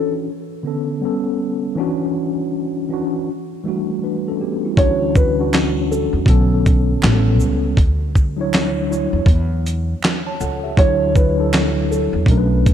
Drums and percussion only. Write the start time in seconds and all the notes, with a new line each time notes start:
4.77 kick, closed hi-hat
5.16 kick, shaker
5.53 finger snap, snare, clap, closed hi-hat
5.92 shaker
6.26 kick, closed hi-hat
6.66 kick, closed hi-hat, shaker
7.02 finger snap, snare, clap, closed hi-hat
7.40 shaker
7.77 kick, closed hi-hat
8.15 kick, shaker
8.53 finger snap, snare, clap, closed hi-hat
8.92 shaker
9.26 kick, closed hi-hat
9.67 closed hi-hat, shaker
10.03 finger snap, snare, clap, closed hi-hat
10.40 shaker
10.77 kick, closed hi-hat
11.16 kick, shaker
11.53 finger snap, snare, clap, closed hi-hat
11.92 shaker
12.26 kick, closed hi-hat
12.66 kick, closed hi-hat, shaker